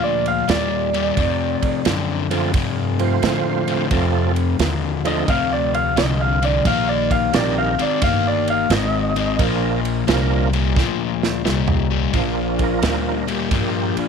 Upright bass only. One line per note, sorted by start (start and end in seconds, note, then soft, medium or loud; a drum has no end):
0.00 0.46 D2 medium
0.48 1.15 D#2 medium
1.17 1.59 F2 medium
1.62 muted upright bass stroke soft
1.86 2.52 F#2 medium
2.54 3.20 G2 medium
3.22 3.89 A2 medium
3.91 4.57 F2 medium
4.59 5.26 D#2 medium
5.28 5.95 D2 medium
5.96 6.63 C2 loud
6.65 7.32 A#1 medium
7.34 7.76 A#1 loud
7.80 muted upright bass stroke soft
8.02 8.69 G1 medium
8.70 9.37 G#1 medium
9.39 10.06 A#1 medium
10.07 10.74 C2 loud
10.76 11.43 D2 medium
11.45 12.12 C2 loud
12.13 12.80 A#1 medium
12.82 13.49 D2 medium
13.51 13.94 G2 medium
13.96 muted upright bass stroke soft